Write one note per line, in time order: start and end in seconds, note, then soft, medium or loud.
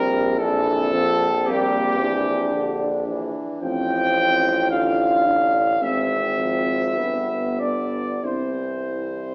0.00 3.31 A#1 medium
0.00 0.40 G3 medium
0.00 0.38 C4 medium
0.00 0.41 C4 medium
0.00 0.38 A#4 medium
0.39 0.94 E3 medium
0.39 2.51 C4 medium
0.39 0.95 D4 medium
0.39 1.45 A4 loud
0.92 1.28 F3 medium
0.92 1.50 C4 medium
1.47 1.97 G3 medium
1.47 2.03 A#3 medium
1.47 3.07 G4 medium
2.01 2.53 E3 medium
2.01 3.35 D4 medium
2.54 3.06 D3 medium
2.54 3.62 D4 medium
3.07 3.63 E3 medium
3.61 5.81 A1 medium
3.61 4.73 F3 medium
3.61 4.69 C4 medium
3.61 4.67 C4 medium
3.61 4.67 G5 loud
4.71 5.82 D3 medium
4.71 5.64 D4 medium
4.71 5.27 F4 medium
4.71 5.80 F5 medium
5.26 5.83 D4 medium
5.80 6.98 G#1 medium
5.80 6.38 E3 medium
5.80 6.95 C4 medium
5.80 6.99 C4 medium
5.80 7.60 E5 medium
6.38 6.99 F3 medium
6.97 8.23 G1 medium
6.97 7.92 G3 soft
6.97 7.59 B3 medium
6.97 7.61 B3 medium
7.59 8.22 B3 medium
7.59 8.25 D4 soft
7.59 8.22 D5 medium
8.23 9.35 C2 soft
8.23 9.35 E3 soft
8.23 9.35 C4 soft
8.23 9.35 E4 soft
8.23 9.35 C5 medium